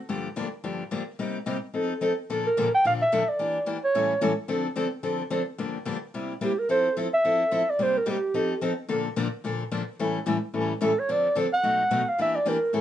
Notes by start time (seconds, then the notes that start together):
0.09 G2 D3 F3 A#3 D4 G4
0.36 G2 D3 F3 A#3 D4 G4
0.64 G2 D3 F3 A#3 D4 G4
0.91 G2 D3 F3 A#3 D4 G4
1.19 C3 G3 A#3 D#4 G4
1.46 C3 G3 A#3 D#4 G4
1.74 F3 C4 D#4 A4
2.01 F3 C4 D#4 A4
2.30 A#2 D3 F3 A#3 D4 A4
2.46 A#4
2.57 A#2 D3 F3 A#3 D4 A4
2.74 G5
2.85 A#2 D3 F3 A#3 D4 A4 F5
3.02 E5
3.12 A#2 D3 F3 A#3 D4 A4
3.29 D5
3.39 E3 A#3 D4 G4
3.66 E3 A#3 D4 G4
3.84 C#5
3.95 A2 E3 G3 C#4 E4 A4
4.21 A2 E3 G3 C#4 E4 A4
4.48 D3 F3 C4 D4 A4
4.76 D3 F3 C4 D4 A4
5.03 D3 F3 C4 D4 A4
5.30 D3 F3 C4 D4 A4
5.58 G2 D3 F3 A#3 D4 G4
5.85 G2 D3 F3 A#3 D4 G4
6.14 C3 G3 A#3 E4 G4
6.41 C3 G3 A#3 E4 G4
6.59 A#4
6.69 F3 C4 E4 A4 C5
6.97 F3 C4 E4 A4
7.14 E5
7.24 F3 C4 E4 A4
7.52 F3 C4 E4 A4
7.70 D5
7.79 C3 G3 A#3 D#4 G4 C5
7.97 A#4
8.06 C3 G3 A#3 D#4 G4
8.34 F3 C4 D#4 A4
8.61 F3 C4 D#4 A4
8.88 A#2 D3 F3 A#3 D4 A4
9.16 A#2 D3 F3 A#3 D4 A4
9.44 A#2 D3 F3 A#3 D4 A4
9.71 A#2 D3 F3 A#3 D4 A4
9.99 A2 E3 G3 C#4 E4 A4
10.26 A2 E3 G3 C#4 E4 A4
10.54 A2 E3 G3 C#4 E4 A4
10.81 A2 E3 G3 C#4 E4 A4
10.99 C#5
11.09 D3 F3 C4 D4 A4 D5
11.36 D3 F3 C4 D4 A4
11.53 F#5
11.63 B2 F#3 A3 D#4 F#4
11.91 B2 F#3 A3 D#4 F#4
12.09 F5
12.18 E3 A#3 D4 G4 E5
12.36 D5
12.46 E3 A#3 D4 G4 A#4
12.73 A2 E3 G3 C#4 E4 A4